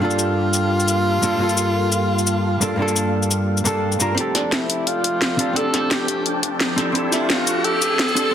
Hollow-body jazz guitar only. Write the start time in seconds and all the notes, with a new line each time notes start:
0.00 G2 D4 F4
0.05 A4
1.21 G2 A#3 D4 F4 A4
1.37 G2 A#3
1.42 F4 A4
2.60 G2 A#3 D4 A4
2.76 G2 A#3 D4
2.82 A4
3.64 G2 A#3 D4 A4
3.99 G2 A#3 D4 F4 A#4
4.15 C4 D4 G4
4.21 A4
5.37 C4 D4 G4 A4
5.53 C4 D4
5.57 G4 A4
6.76 C4 D4 G4 A4
6.92 C4 D4
6.96 G4 A4
8.15 C4 D4 G4 A4
8.31 C4